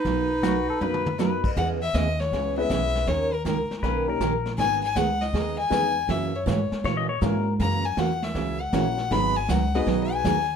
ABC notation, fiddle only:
X:1
M:4/4
L:1/8
Q:"Swing" 1/4=159
K:C#dor
V:1 name="Fiddle"
B6- B z | f e d c2 e3 | c A A2 z4 | g g f d2 g3 |
e c c2 z4 | a g f e2 f3 | b g f d2 g3 |]